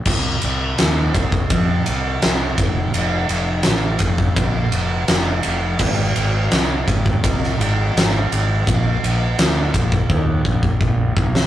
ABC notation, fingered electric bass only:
X:1
M:4/4
L:1/8
Q:1/4=84
K:Ablyd
V:1 name="Fingered electric bass" clef=bass
C,, C,, E,, C,, F,, C,, C,, F,,, | F,,, F,,, =A,,, F,,, B,,, F,,, F,,, F,,, | A,,, A,,, C,, A,,, C,, A,,, A,,, A,,, | B,,, B,,, D,, B,,, E,, B,,, B,,, =B,,, |]